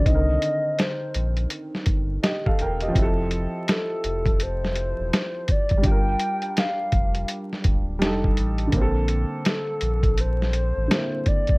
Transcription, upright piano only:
0.00 0.08 D3 soft
0.05 2.19 D#3 medium
0.05 2.18 C4 medium
0.10 2.21 D3 soft
0.14 2.23 A#4 medium
2.23 2.44 G4 medium
2.23 2.44 D#5 medium
2.46 2.59 A4 medium
2.46 2.59 F5 medium
2.61 2.82 A#4 medium
2.61 2.81 G5 medium
2.82 3.16 G4 soft
2.82 3.16 D#5 medium
2.88 5.77 F3 medium
2.92 5.79 C4 medium
2.97 5.81 E4 medium
3.02 5.84 A4 medium
5.78 7.94 G3 medium
5.82 7.96 D4 medium
5.87 7.98 F4 medium
5.91 8.01 A#4 medium
7.99 8.72 G3 medium
7.99 8.73 D4 medium
8.03 8.74 D#4 medium
8.03 8.76 A4 medium
8.67 10.83 D3 medium
8.72 10.86 A#3 medium
8.77 10.88 C4 medium
8.81 10.90 A4 medium
10.88 11.56 D3 soft
10.88 11.58 A#3 soft
10.92 11.58 C4 soft
10.92 11.58 E4 medium

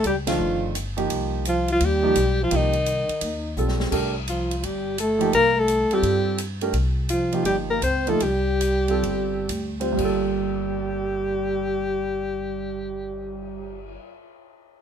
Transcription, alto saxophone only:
0.07 0.17 G4 medium
0.28 0.72 F4 medium
1.49 1.69 F4 medium
1.73 1.87 F4 medium
1.85 2.41 G4 medium
2.44 2.58 F4 medium
2.56 3.59 D#4 medium
4.30 4.59 F4 medium
4.59 4.66 F4 medium
4.65 4.99 G4 medium
5.00 5.32 A4 medium
5.35 5.61 A#4 loud
5.59 5.96 A4 medium
5.94 6.40 G4 medium
7.10 7.43 F4 medium
7.46 7.56 G4 medium
7.70 7.82 A#4 medium
7.84 8.11 C5 medium
8.09 8.25 A4 medium
8.23 9.80 G4 medium
9.98 13.97 G4 medium

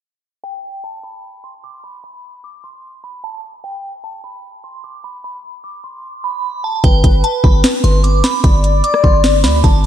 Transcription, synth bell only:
0.44 0.81 G5 loud
0.84 1.01 A5 medium
1.04 1.41 B5 medium
1.44 1.61 C6 medium
1.64 1.81 D6 medium
1.84 2.01 B5 medium
2.04 2.41 B5 medium
2.44 2.61 D6 medium
2.64 3.01 C6 medium
3.04 3.21 B5 medium
3.24 3.61 A5 medium
3.64 4.01 G5 medium
4.04 4.21 A5 medium
4.24 4.61 B5 medium
4.64 4.81 C6 medium
4.84 5.01 D6 medium
5.04 5.21 B5 medium
5.24 5.62 B5 loud
5.64 5.81 D6 medium
5.84 6.01 C6 medium
6.24 6.62 B5 medium
6.64 6.81 A5 medium
6.84 7.21 G5 loud
7.24 7.41 A5 medium
7.44 7.81 B5 medium
7.84 8.01 C6 medium
8.04 8.21 D6 medium
8.24 8.41 B5 medium
8.44 8.81 B5 medium
8.84 9.01 D6 medium
9.04 9.41 C6 medium
9.44 9.61 B5 medium
9.64 9.86 A5 medium

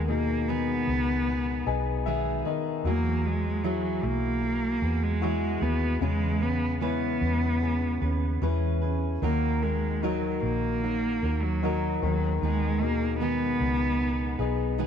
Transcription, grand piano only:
0.00 2.41 D#3 medium
0.08 0.85 B2 soft
0.08 0.85 D#4 soft
0.08 0.86 G#4 soft
1.66 2.43 B3 soft
1.66 2.43 G#4 soft
1.66 2.43 D#5 soft
1.66 2.03 G#5 medium
2.06 2.42 E5 medium
2.46 2.84 D#3 medium
2.46 2.82 D#5 soft
2.85 5.97 F#3 medium
3.64 4.40 E4 soft
3.64 4.41 F#4 soft
3.64 4.41 G#4 soft
5.21 5.99 E4 soft
5.21 5.99 F#4 soft
5.21 5.99 G#4 soft
6.01 9.18 C#3 medium
6.81 7.59 C#4 soft
6.81 7.59 E4 soft
6.81 7.60 B4 soft
8.42 9.20 C#4 soft
8.42 9.20 E4 soft
8.42 9.20 B4 soft
9.22 11.99 D#3 medium
10.03 10.81 D#4 soft
10.03 10.81 F#4 soft
10.03 10.81 A#4 soft
11.63 12.01 D#4 soft
11.63 12.01 F#4 soft
11.63 12.02 A#4 soft
12.03 14.87 D#3 medium
12.81 13.58 B2 soft
12.81 13.58 D#4 soft
12.81 13.58 G#4 soft
14.39 14.87 B3 soft
14.39 14.87 D#4 soft
14.39 14.87 G#4 soft

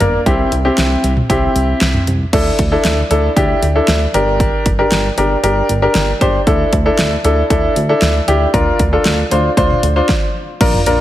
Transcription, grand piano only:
0.00 0.18 A#3 medium
0.00 0.18 D4 medium
0.00 0.18 A#4 medium
0.26 0.53 C4 medium
0.26 0.53 E4 medium
0.26 0.53 G4 medium
0.65 1.09 C4 medium
0.65 1.10 E4 medium
0.65 1.10 G4 medium
1.30 2.01 C4 medium
1.30 2.01 E4 medium
1.30 2.01 G4 medium
2.33 2.60 D4 medium
2.33 2.60 E4 medium
2.33 2.60 A4 medium
2.72 2.99 D4 medium
2.72 2.99 E4 medium
2.72 2.99 A4 medium
3.11 3.29 D4 medium
3.11 3.29 E4 medium
3.11 3.29 A4 medium
3.37 3.63 D4 medium
3.37 3.63 E4 medium
3.37 3.63 G4 loud
3.75 4.02 D4 medium
3.75 4.02 E4 medium
3.75 4.02 A4 medium
4.14 4.66 D4 medium
4.14 4.66 G4 medium
4.14 4.66 A#4 loud
4.79 5.06 D4 medium
4.79 5.06 G4 medium
4.79 5.06 A#4 medium
5.18 5.36 D4 medium
5.18 5.35 G4 medium
5.18 5.36 A#4 medium
5.43 5.70 D4 medium
5.43 5.70 G4 medium
5.43 5.70 A#4 loud
5.82 6.09 D4 medium
5.82 6.09 G4 medium
5.82 6.09 A#4 loud
6.21 6.39 D4 medium
6.21 6.39 G4 medium
6.21 6.39 C5 medium
6.47 6.74 D4 medium
6.47 6.74 E4 medium
6.47 6.74 A4 medium
6.86 7.12 D4 medium
6.86 7.12 E4 medium
6.86 7.12 A4 medium
7.25 7.42 D4 medium
7.25 7.42 E4 medium
7.25 7.42 A4 medium
7.50 7.77 D4 medium
7.50 7.77 E4 medium
7.50 7.77 A4 loud
7.89 8.16 D4 medium
7.89 8.16 E4 medium
7.89 8.16 A4 loud
8.28 8.46 D4 medium
8.28 8.46 E4 medium
8.28 8.46 G4 loud
8.54 8.81 D4 medium
8.54 8.81 F4 medium
8.54 8.81 A#4 medium
8.93 9.19 D4 medium
8.93 9.19 F4 medium
8.93 9.19 A4 medium
9.31 9.49 D4 medium
9.31 9.49 F4 medium
9.31 9.49 C5 medium
9.57 9.84 D4 medium
9.57 9.84 F4 medium
9.57 9.84 C5 loud
9.96 10.09 D4 medium
9.96 10.09 F4 medium
9.96 10.09 C5 medium
10.61 10.79 D4 medium
10.61 10.79 F4 medium
10.61 10.79 A#4 medium
10.87 11.01 D4 medium
10.87 11.01 F4 medium
10.87 11.01 A#4 loud

